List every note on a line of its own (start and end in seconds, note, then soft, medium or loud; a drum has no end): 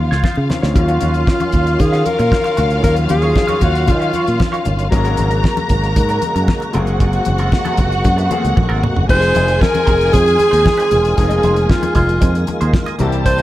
0.00 0.45 D#3 medium
0.00 0.46 C4 medium
0.00 0.46 C#4 medium
0.00 0.50 F4 medium
0.00 0.74 F4 medium
0.00 0.74 F5 medium
0.11 0.22 C#2 medium
0.11 0.22 D#4 soft
0.11 0.22 F4 soft
0.11 0.22 C#5 medium
0.11 snare medium
0.24 0.37 D#4 medium
0.24 0.37 F4 medium
0.24 0.36 C5 medium
0.24 kick medium
0.24 snare medium
0.24 muted conga soft
0.24 high conga medium
0.35 0.48 C#3 medium
0.35 muted clean electric guitar stroke soft
0.35 muted conga soft
0.49 0.73 D#3 medium
0.49 0.76 C4 soft
0.49 0.75 C#4 soft
0.49 0.77 F4 medium
0.49 muted clean electric guitar stroke soft
0.49 snare loud
0.49 low conga medium
0.62 0.74 D2 medium
0.62 0.74 D#4 soft
0.62 0.74 F4 medium
0.62 0.73 C#5 medium
0.62 snare medium
0.74 0.98 D#2 medium
0.74 2.79 D#3 medium
0.74 4.88 D#3 medium
0.74 4.88 F#3 medium
0.74 2.80 F#3 medium
0.74 4.88 C#4 medium
0.74 2.80 C#4 medium
0.74 0.83 D#4 medium
0.74 4.88 F4 medium
0.74 1.82 F4 loud
0.74 4.89 F4 medium
0.74 4.88 F5 loud
0.74 kick loud
0.74 closed hi-hat medium
0.74 muted conga soft
0.83 2.84 F4 medium
0.88 1.00 F#4 medium
0.88 1.01 C#5 medium
0.88 1.02 F5 medium
0.88 closed hi-hat soft
0.88 muted conga soft
1.01 1.24 D#2 medium
1.01 1.12 F#4 medium
1.01 1.13 C#5 medium
1.01 1.13 F5 medium
1.01 closed hi-hat medium
1.01 high conga medium
1.14 muted clean electric guitar stroke soft
1.14 closed hi-hat soft
1.27 muted clean electric guitar stroke soft
1.27 kick loud
1.27 snare loud
1.27 muted conga soft
1.27 high conga soft
1.40 muted clean electric guitar stroke soft
1.40 closed hi-hat soft
1.40 muted conga soft
1.40 high conga medium
1.52 1.76 D#2 medium
1.52 kick medium
1.52 closed hi-hat medium
1.52 low conga medium
1.66 muted clean electric guitar stroke soft
1.66 closed hi-hat soft
1.79 2.02 D#3 medium
1.79 2.07 G#4 loud
1.79 muted clean electric guitar stroke soft
1.79 kick loud
1.79 closed hi-hat medium
1.79 low conga medium
1.92 2.04 F#4 medium
1.92 2.05 C#5 medium
1.92 2.05 F5 medium
1.92 snare soft
1.92 closed hi-hat soft
2.05 2.83 A#4 loud
2.05 muted clean electric guitar stroke soft
2.05 closed hi-hat medium
2.05 high conga medium
2.19 2.30 A#2 medium
2.19 muted clean electric guitar stroke soft
2.19 closed hi-hat medium
2.32 muted clean electric guitar stroke soft
2.32 kick loud
2.32 snare loud
2.32 high conga medium
2.44 muted clean electric guitar stroke soft
2.44 closed hi-hat soft
2.44 muted conga soft
2.57 2.80 D2 medium
2.57 2.71 F#4 medium
2.57 2.70 C#5 medium
2.57 2.69 F5 medium
2.57 closed hi-hat medium
2.57 low conga medium
2.70 2.82 F#4 medium
2.70 2.82 C#5 medium
2.70 2.81 F5 medium
2.70 closed hi-hat soft
2.83 3.06 D#2 loud
2.83 4.88 D#3 medium
2.83 2.90 F3 medium
2.83 4.88 C#4 medium
2.83 4.89 F4 medium
2.83 3.07 F#4 medium
2.83 2.95 A#4 loud
2.83 3.08 C#5 medium
2.83 3.08 F5 medium
2.83 kick medium
2.83 closed hi-hat medium
2.83 muted conga soft
2.90 4.89 F#3 medium
2.96 closed hi-hat soft
2.96 muted conga soft
3.09 3.32 D#2 loud
3.09 3.64 G#4 loud
3.09 muted clean electric guitar stroke soft
3.09 closed hi-hat medium
3.09 high conga medium
3.22 3.34 F#4 soft
3.22 3.34 C#5 medium
3.22 3.33 F5 medium
3.22 closed hi-hat soft
3.35 muted clean electric guitar stroke soft
3.35 kick loud
3.35 snare loud
3.35 muted conga soft
3.35 high conga medium
3.47 3.59 F#4 medium
3.47 3.60 C#5 medium
3.47 3.61 F5 medium
3.47 closed hi-hat soft
3.47 muted conga soft
3.47 high conga medium
3.61 3.90 D#2 loud
3.61 3.72 F#4 medium
3.61 3.91 F#4 loud
3.61 3.72 C#5 medium
3.61 3.73 F5 medium
3.61 kick medium
3.61 closed hi-hat medium
3.61 low conga medium
3.75 closed hi-hat soft
3.88 4.10 D#3 medium
3.88 4.67 F4 medium
3.88 muted clean electric guitar stroke soft
3.88 kick loud
3.88 closed hi-hat medium
3.88 muted conga soft
3.88 low conga medium
4.00 4.12 F#4 medium
4.00 4.13 C#5 medium
4.00 4.14 F5 medium
4.00 closed hi-hat soft
4.13 4.24 F#4 medium
4.13 4.25 C#5 medium
4.13 4.25 F#5 medium
4.13 closed hi-hat medium
4.13 high conga medium
4.27 4.39 A#2 medium
4.27 muted clean electric guitar stroke soft
4.27 closed hi-hat soft
4.40 muted clean electric guitar stroke soft
4.40 kick loud
4.40 snare loud
4.40 muted conga soft
4.40 high conga medium
4.52 4.65 F#4 medium
4.52 4.65 C#5 medium
4.52 4.66 F5 medium
4.52 closed hi-hat soft
4.65 4.88 G1 medium
4.65 muted clean electric guitar stroke soft
4.65 closed hi-hat medium
4.65 low conga medium
4.79 muted clean electric guitar stroke soft
4.79 closed hi-hat soft
4.91 5.14 G#1 loud
4.91 6.73 C#3 medium
4.91 6.70 F#3 medium
4.91 9.05 G#3 medium
4.91 9.05 A#3 medium
4.91 6.71 A#3 medium
4.91 6.71 C#4 medium
4.91 6.73 F#4 medium
4.91 6.72 G#4 medium
4.91 6.71 A#4 medium
4.91 6.71 A#5 loud
4.91 muted clean electric guitar stroke soft
4.91 kick loud
4.91 closed hi-hat medium
4.91 muted conga soft
5.05 5.17 C#4 medium
5.05 5.18 F#4 medium
5.05 5.18 A#4 medium
5.05 closed hi-hat soft
5.17 5.40 G#1 medium
5.17 5.29 C#4 medium
5.17 5.29 F#4 medium
5.17 5.29 A#4 medium
5.17 closed hi-hat medium
5.17 high conga medium
5.31 muted clean electric guitar stroke soft
5.31 closed hi-hat soft
5.43 muted clean electric guitar stroke soft
5.43 kick loud
5.43 snare loud
5.43 high conga medium
5.57 muted clean electric guitar stroke soft
5.57 closed hi-hat soft
5.57 muted conga soft
5.57 high conga medium
5.69 5.98 G#1 loud
5.69 kick medium
5.69 closed hi-hat medium
5.69 low conga medium
5.83 muted clean electric guitar stroke soft
5.83 closed hi-hat soft
5.96 6.18 G#2 medium
5.96 muted clean electric guitar stroke soft
5.96 kick loud
5.96 closed hi-hat medium
5.96 muted conga soft
5.96 low conga medium
6.09 6.21 C#4 medium
6.09 6.22 F#4 medium
6.09 6.22 A#4 medium
6.09 closed hi-hat soft
6.09 muted conga soft
6.22 muted clean electric guitar stroke soft
6.22 closed hi-hat medium
6.22 high conga medium
6.35 6.46 F#2 medium
6.35 muted clean electric guitar stroke soft
6.35 closed hi-hat soft
6.48 muted clean electric guitar stroke soft
6.48 kick loud
6.48 snare loud
6.48 muted conga soft
6.48 high conga medium
6.60 muted clean electric guitar stroke soft
6.60 closed hi-hat soft
6.60 muted conga soft
6.73 7.19 F#1 loud
6.73 9.07 C3 medium
6.73 8.27 F#3 medium
6.73 6.80 A3 medium
6.73 6.87 C4 medium
6.73 8.28 C4 medium
6.73 6.86 F4 medium
6.73 9.07 F#4 medium
6.73 9.05 F#4 medium
6.73 8.29 G#4 medium
6.73 6.85 A#4 medium
6.73 9.05 F#5 loud
6.73 closed hi-hat medium
6.73 low conga medium
6.80 8.31 A#3 medium
6.86 6.98 C4 medium
6.86 6.98 F4 medium
6.86 6.98 A#4 medium
6.86 closed hi-hat soft
7.00 7.24 C4 medium
7.00 7.25 F4 medium
7.00 7.25 A#4 medium
7.00 kick loud
7.00 closed hi-hat medium
7.13 closed hi-hat soft
7.13 muted conga soft
7.25 7.49 F#1 loud
7.25 muted clean electric guitar stroke soft
7.25 closed hi-hat medium
7.25 high conga medium
7.38 7.50 C4 soft
7.38 7.50 F4 medium
7.38 7.50 A#4 medium
7.38 closed hi-hat soft
7.52 muted clean electric guitar stroke soft
7.52 kick loud
7.52 snare loud
7.52 muted conga soft
7.52 high conga medium
7.65 7.77 C4 medium
7.65 7.78 F4 medium
7.65 7.78 A#4 medium
7.65 closed hi-hat soft
7.65 muted conga soft
7.65 high conga medium
7.77 8.01 F#1 medium
7.77 7.89 C4 medium
7.77 7.90 F4 medium
7.77 7.90 A#4 medium
7.77 kick medium
7.77 closed hi-hat medium
7.77 low conga medium
7.92 muted clean electric guitar stroke soft
7.92 closed hi-hat soft
8.04 8.27 F#2 loud
8.04 muted clean electric guitar stroke soft
8.04 kick loud
8.04 closed hi-hat medium
8.04 low conga medium
8.17 8.28 C4 medium
8.17 8.29 F4 medium
8.17 8.31 A#4 medium
8.17 closed hi-hat soft
8.17 muted conga soft
8.30 9.09 F#3 medium
8.30 8.37 A3 soft
8.30 8.41 C4 medium
8.30 9.08 C4 soft
8.30 8.41 F4 medium
8.30 9.10 G#4 medium
8.30 8.42 C5 medium
8.30 closed hi-hat medium
8.30 high conga medium
8.37 9.12 A#3 medium
8.43 8.55 C#2 medium
8.43 muted clean electric guitar stroke soft
8.43 closed hi-hat medium
8.56 8.68 A#1 medium
8.56 muted clean electric guitar stroke soft
8.56 kick medium
8.56 high tom medium
8.56 high conga medium
8.69 8.82 G#1 loud
8.69 8.82 C4 medium
8.69 8.82 F4 medium
8.69 8.83 A#4 medium
8.69 muted conga soft
8.83 muted clean electric guitar stroke soft
8.83 mid tom medium
8.83 low conga medium
8.96 9.07 F#1 medium
8.96 muted clean electric guitar stroke soft
8.96 floor tom medium
9.08 9.31 F1 loud
9.08 12.96 D#3 medium
9.08 11.13 F3 medium
9.08 11.13 G#3 medium
9.08 12.96 G#3 medium
9.08 11.14 C4 medium
9.08 11.16 C4 medium
9.08 11.14 D#4 medium
9.08 12.96 F4 medium
9.08 9.16 G4 medium
9.08 12.70 G#4 loud
9.08 9.63 C5 loud
9.08 12.70 G#5 loud
9.08 muted clean electric guitar stroke soft
9.08 kick loud
9.08 crash loud
9.08 muted conga soft
9.17 11.17 G#4 medium
9.22 9.34 D#4 medium
9.22 9.34 G#4 medium
9.22 9.35 C5 medium
9.22 closed hi-hat medium
9.22 muted conga soft
9.35 9.57 F1 loud
9.35 9.46 D#4 medium
9.35 9.46 G#4 medium
9.35 9.46 C5 medium
9.35 closed hi-hat medium
9.35 high conga medium
9.48 closed hi-hat soft
9.61 10.15 A#4 loud
9.61 muted clean electric guitar stroke soft
9.61 kick loud
9.61 snare loud
9.61 muted conga soft
9.61 high conga medium
9.74 muted clean electric guitar stroke soft
9.74 closed hi-hat soft
9.74 muted conga soft
9.74 high conga medium
9.86 10.09 F1 loud
9.86 10.01 D#4 loud
9.86 10.00 G#4 loud
9.86 9.99 C5 loud
9.86 kick loud
9.86 closed hi-hat medium
9.86 low conga medium
10.00 muted clean electric guitar stroke soft
10.00 closed hi-hat medium
10.12 10.36 F2 loud
10.12 10.27 D#4 medium
10.12 11.17 G#4 loud
10.12 10.25 G#4 medium
10.12 10.24 C5 loud
10.12 kick loud
10.12 closed hi-hat medium
10.12 muted conga soft
10.12 low conga medium
10.26 closed hi-hat soft
10.26 muted conga soft
10.38 muted clean electric guitar stroke medium
10.38 closed hi-hat medium
10.38 high conga medium
10.51 10.64 D#2 medium
10.51 10.63 D#4 medium
10.51 10.63 G#4 medium
10.51 10.63 C5 medium
10.51 closed hi-hat medium
10.64 muted clean electric guitar stroke soft
10.64 kick loud
10.64 snare loud
10.64 muted conga soft
10.64 high conga medium
10.77 10.89 D#4 medium
10.77 10.90 G#4 medium
10.77 10.90 C5 medium
10.77 closed hi-hat medium
10.77 muted conga soft
10.90 11.14 E1 medium
10.90 muted clean electric guitar stroke soft
10.90 closed hi-hat medium
10.90 low conga medium
11.03 muted clean electric guitar stroke medium
11.03 closed hi-hat soft
11.15 11.40 F1 loud
11.15 12.95 F3 medium
11.15 12.96 G#3 medium
11.15 13.42 A#3 medium
11.15 12.96 C4 medium
11.15 12.96 D#4 medium
11.15 11.71 G#4 loud
11.15 12.97 G#4 medium
11.15 muted clean electric guitar stroke soft
11.15 kick loud
11.15 closed hi-hat medium
11.15 muted conga soft
11.29 11.42 D#4 medium
11.29 11.42 G#4 medium
11.29 11.44 D#5 medium
11.29 closed hi-hat soft
11.29 muted conga soft
11.43 11.65 F1 loud
11.43 11.54 D#4 medium
11.43 11.54 G#4 medium
11.43 11.55 C5 medium
11.43 closed hi-hat medium
11.43 high conga medium
11.56 muted clean electric guitar stroke soft
11.56 closed hi-hat soft
11.69 11.95 F4 loud
11.69 muted clean electric guitar stroke soft
11.69 kick loud
11.69 snare loud
11.69 muted conga soft
11.69 high conga medium
11.83 muted clean electric guitar stroke soft
11.83 closed hi-hat medium
11.83 muted conga soft
11.83 high conga medium
11.95 12.17 F1 loud
11.95 12.09 D#4 medium
11.95 12.44 F4 medium
11.95 12.08 G#4 loud
11.95 12.07 C5 loud
11.95 kick medium
11.95 closed hi-hat medium
11.95 low conga medium
12.08 muted clean electric guitar stroke soft
12.08 closed hi-hat soft
12.21 12.44 F2 loud
12.21 12.35 D#4 medium
12.21 12.35 G#4 medium
12.21 12.33 C5 medium
12.21 kick loud
12.21 closed hi-hat medium
12.21 low conga loud
12.35 muted clean electric guitar stroke soft
12.35 closed hi-hat soft
12.35 muted conga soft
12.47 muted clean electric guitar stroke medium
12.47 closed hi-hat medium
12.47 high conga medium
12.61 12.72 D#2 medium
12.61 12.72 D#4 medium
12.61 12.72 G#4 medium
12.61 12.71 C5 medium
12.61 closed hi-hat medium
12.73 kick loud
12.73 snare loud
12.73 muted conga soft
12.73 high conga medium
12.86 12.98 D#4 medium
12.86 12.97 G#4 medium
12.86 12.97 D#5 medium
12.86 closed hi-hat soft
12.86 muted conga soft
12.98 13.42 C2 loud
12.98 13.42 C3 medium
12.98 13.42 E3 medium
12.98 13.42 G3 medium
12.98 13.42 A#3 medium
12.98 13.42 C4 medium
12.98 13.13 E4 medium
12.98 13.42 E4 loud
12.98 13.07 F#4 medium
12.98 13.42 G4 loud
12.98 13.12 A#4 medium
12.98 13.12 D5 medium
12.98 13.42 A5 loud
12.98 closed hi-hat medium
12.98 low conga medium
13.08 13.42 G4 medium
13.12 closed hi-hat medium
13.25 13.42 C5 loud
13.25 muted clean electric guitar stroke soft
13.25 kick loud
13.25 closed hi-hat medium
13.25 muted conga soft
13.38 13.42 C5 medium
13.38 closed hi-hat soft